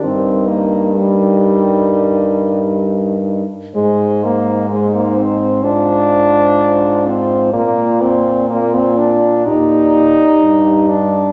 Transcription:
<<
  \new Staff \with { instrumentName = "French horn" } { \time 4/4 \key ees \major \tempo 4 = 64 bes'4 bes'2~ bes'8 r8 | c''4 c''4 c''2 | d''4 d''4 d''4. r8 | }
  \new Staff \with { instrumentName = "French horn" } { \time 4/4 \key ees \major ees'4 ees'2~ ees'8 r8 | ees'4 ees'4 f'2 | f'4 f'4 g'4. r8 | }
  \new Staff \with { instrumentName = "French horn" } { \time 4/4 \key ees \major c'8 bes8 g2~ g8 r8 | aes8 bes8 aes16 bes16 c'8 d'4. c'8 | bes8 c'8 bes16 c'16 d'8 ees'4. d'8 | }
  \new Staff \with { instrumentName = "French horn" } { \clef bass \time 4/4 \key ees \major g,2.~ g,8 r8 | aes,2 aes,2 | bes,2 bes,8 r8 g,4 | }
>>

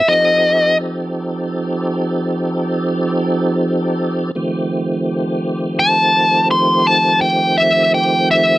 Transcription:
<<
  \new Staff \with { instrumentName = "Lead electric guitar" } { \time 12/8 \key f \lydian \tempo 4. = 56 ees''4 r1 r4 | r2 a''4 c'''8 a''8 g''8 e''8 g''8 e''8 | }
  \new Staff \with { instrumentName = "Tonewheel organ" } { \time 12/8 \key f \lydian <f c' ees' g' a'>1. | <ees f a c' g'>1. | }
>>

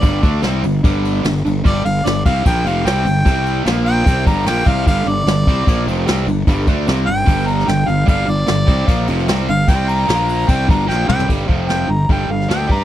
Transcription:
<<
  \new Staff \with { instrumentName = "Harmonica" } { \time 4/4 \key g \minor \tempo 4 = 149 d''4 r2. | d''8 f''8 d''8 f''8 g''8 f''8 g''4~ | g''4 r8 g''4 bes''8 g''8 f''8 | f''8 d''2 r4. |
r4. g''4 bes''8 g''8 f''8 | f''8 d''2 r4 f''8 | g''8 bes''4. g''8 bes''8 g''8 g''8 | r4 g''8 bes''8 g''8 f''8 g''8 bes''8 | }
  \new Staff \with { instrumentName = "Distorted electric guitar" } { \clef bass \time 4/4 \key g \minor <g, d g>8 <d a d'>8 <c g c'>8 <g, d>8 <g, d g>4 <g, d>8 <g, d>8 | <g, d g>8 <g, d>8 <g, d>8 <c g c'>8 <bes, f bes>8 <f, c f>8 <c g c'>8 <g, d>8 | <c g c'>4 <bes, f bes>4 <c g c'>8 <g, d g>8 <bes, f bes>8 <c g c'>8 | <g, d g>8 <g, d>8 <g, d>8 <c g c'>8 <bes, f bes>8 <f, c f>8 <c g c'>8 <g, d>8 |
<g, d g>8 <d a d'>8 <c g c'>8 <g, d>8 <g, d g>4 <g, d>8 <g, d>8 | <g, d g>8 <g, d>8 <g, d>8 <c g c'>8 <bes, f bes>8 <f, c f>8 <c g c'>8 <g, d>8 | <c g c'>4 <bes, f bes>4 <c g c'>8 <g, d g>8 <bes, f bes>8 <c g c'>8 | <g, d g>8 <f, c f>4 <g, d>8 <g, d g>8 <g, d>8 <d a d'>8 <g d' g'>8 | }
  \new Staff \with { instrumentName = "Fingered electric bass" } { \clef bass \time 4/4 \key g \minor g,,8 d,8 c,8 g,,8 g,,4 g,,8 g,,8 | g,,8 g,,8 g,,8 c,8 bes,,8 f,,8 c,8 g,,8 | c,4 bes,,4 c,8 g,,8 bes,,8 c,8 | g,,8 g,,8 g,,8 c,8 bes,,8 f,,8 c,8 g,,8 |
g,,8 d,8 c,8 g,,8 g,,4 g,,8 g,,8 | g,,8 g,,8 g,,8 c,8 bes,,8 f,,8 c,8 g,,8 | c,4 bes,,4 c,8 g,,8 bes,,8 c,8 | g,,8 f,,4 g,,8 g,,8 g,,8 d,8 g,8 | }
  \new DrumStaff \with { instrumentName = "Drums" } \drummode { \time 4/4 <cymc bd>8 <cymc bd>8 <cymc sn>8 cymc8 <cymc bd>8 cymc8 <cymc sn>16 sn16 cymc8 | <cymc bd>8 cymc8 <cymc sn>8 <cymc bd>8 <cymc bd>8 cymc8 <cymc sn>8 cymc8 | <cymc bd>8 cymc8 <cymc sn>8 cymc8 <cymc bd>8 <cymc bd>8 <cymc sn>8 <cymc bd>8 | <cymc bd>8 cymc8 <cymc sn>8 <cymc bd>8 <cymc bd>8 cymc8 <cymc sn>8 cymc8 |
<cymc bd>8 <cymc bd>8 <cymc sn>8 cymc8 <cymc bd>8 cymc16 sn16 <cymc sn>8 cymc8 | <cymc bd>8 cymc8 <cymc sn>8 <cymc bd>8 <cymc bd>8 cymc16 sn16 <cymc sn>16 sn16 cymc8 | <cymc bd>8 cymc8 <cymc sn>8 cymc8 <cymc bd>8 <cymc bd>8 sn8 toml16 tomfh16 | <cymc bd>8 bd8 <hho sn>4 <hho bd>8. sn16 <hho sn>8 bd8 | }
>>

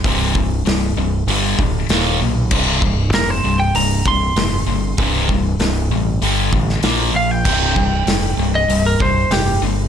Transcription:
<<
  \new Staff \with { instrumentName = "Lead electric guitar" } { \time 4/4 \key g \dorian \tempo 4 = 97 c'''4. r2 r8 | r4 bes'16 c''8 g''16 bes''8 c'''4.~ | c'''4. r2 f''16 g''16~ | g''4.~ g''16 ees''8 bes'16 c''8 g'8 r8 | }
  \new Staff \with { instrumentName = "Distorted electric guitar" } { \clef bass \time 4/4 \key g \dorian <c, g, c>8 <c, g,>8 <c, g,>8 <c, g,>8 <g, d g>8 <g, d>8 <ees, bes, ees>8 <ees, bes,>8 | <c, g, c>8 <c, g,>8 <c, g,>8 <c, g,>8 <c, g,>8 <c, g,>8 <c, g,>8 <c, g,>8 | <c, g, c>8 <c, g,>8 <c, g,>8 <c, g,>8 <g, d g>8 <g, d>8 <bes, f bes>8 <bes, f>8 | <c, g, c>8 <c, g,>8 <c, g,>8 <c, g,>8 <c, g,>8 <c, g,>8 <c, g,>8 <c, g,>8 | }
  \new Staff \with { instrumentName = "Distorted electric guitar" } { \clef bass \time 4/4 \key g \dorian <c, g, c>8 <c, g,>8 <c, g,>8 <c, g,>8 <g, d g>8 <g, d>8 <ees, bes, ees>8 <ees, bes,>8 | <c, g, c>8 <c, g,>8 <c, g,>8 <c, g,>8 <c, g,>8 <c, g,>8 <c, g,>8 <c, g,>8 | <c, g, c>8 <c, g,>8 <c, g,>8 <c, g,>8 <g, d g>8 <g, d>8 <bes, f bes>8 <bes, f>8 | <c, g, c>8 <c, g,>8 <c, g,>8 <c, g,>8 <c, g,>8 <c, g,>8 <c, g,>8 <c, g,>8 | }
  \new Staff \with { instrumentName = "Fingered electric bass" } { \clef bass \time 4/4 \key g \dorian c,,4 c,,8 c,,8 g,,8 d,,8 ees,,8 b,,8 | c,,4 f,,8 c,,8 c,,8 c,,8 f,,8 g,,8 | c,,4 c,,8 a,,8 g,,8 a,,8 bes,,8 bes,,8 | c,,4 f,,8 c,,8 c,,8 c,,8 f,,8 g,,8 | }
  \new DrumStaff \with { instrumentName = "Drums" } \drummode { \time 4/4 <hho bd>8 bd8 <hho sn>4 hho8 bd8 <hho sn>4 | <cymc bd>8 bd8 <hho sn>4 hho8 bd8 <hho sn>4 | <hho bd>8 bd8 <hho sn>4 hho8 bd16 sn16 <hho sn>4 | <cymc bd>8 bd8 <hho sn>4 hho8 bd8 <hho sn>4 | }
>>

